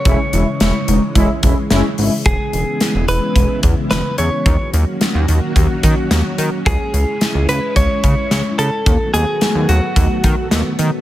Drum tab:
HH |xxxxxxxo|xxxxxxxx|xxxxxxxx|xxxxxxxx|
SD |--o---o-|--o---o-|--o---o-|--o---o-|
BD |o---oo--|o---oo--|o---oo--|o---oo--|

HH |xxxxxxxx|
SD |--o---o-|
BD |o---oo--|